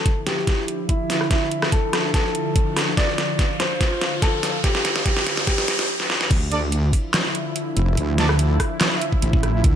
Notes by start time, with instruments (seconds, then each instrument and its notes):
Already playing: analog synth pad D3 F3 E4, grand piano A4, riser
0.06 kick, closed hi-hat
0.26 grand piano G4, snare, closed hi-hat
0.47 kick, snare, closed hi-hat
0.68 closed hi-hat
0.89 grand piano E4, kick, closed hi-hat
1.10 snare, open hi-hat
1.21 cross-stick
1.31 grand piano E4, kick, snare, closed hi-hat
1.51 closed hi-hat
1.62 cross-stick, snare
1.72 grand piano A4, kick, closed hi-hat
1.93 cross-stick, snare, closed hi-hat
2.14 grand piano A4, kick, snare, closed hi-hat
2.35 closed hi-hat
2.56 kick, closed hi-hat
2.77 cross-stick, snare, open hi-hat
2.97 analog synth pad F4, grand piano D5, kick, snare, closed hi-hat
3.18 snare, closed hi-hat
3.39 kick, snare, closed hi-hat
3.60 grand piano C5, snare, closed hi-hat
3.81 kick, snare, closed hi-hat
4.01 snare, closed hi-hat
4.22 grand piano A4, kick, snare, closed hi-hat
4.43 snare, open hi-hat
4.64 grand piano G4, kick, snare, closed hi-hat
4.75 snare
4.85 snare, closed hi-hat
4.96 snare
5.06 grand piano G4, kick, snare, closed hi-hat
5.17 snare
5.27 snare, closed hi-hat
5.37 snare
5.47 grand piano G4, kick, snare, closed hi-hat
5.58 snare
5.68 snare, closed hi-hat
5.79 snare
6.00 snare
6.10 snare
6.21 snare
6.31 wobble bass D2, analog synth pad D3 F3 E4, kick, closed hi-hat, crash
6.52 brass ensemble D4 A4 D5, closed hi-hat
6.72 closed hi-hat
6.93 kick, open hi-hat
7.14 snare, clap, closed hi-hat
7.35 closed hi-hat
7.56 closed hi-hat
7.77 wobble bass F1, closed hi-hat
7.97 wobble bass D2, closed hi-hat
8.18 brass ensemble D4 A4 D5, snare, closed hi-hat
8.29 cross-stick
8.39 closed hi-hat
8.60 kick, cross-stick, open hi-hat
8.81 snare, clap, closed hi-hat
9.02 closed hi-hat
9.12 kick
9.22 wobble bass A1, closed hi-hat
9.33 kick
9.43 cross-stick, closed hi-hat
9.64 wobble bass D2, kick, closed hi-hat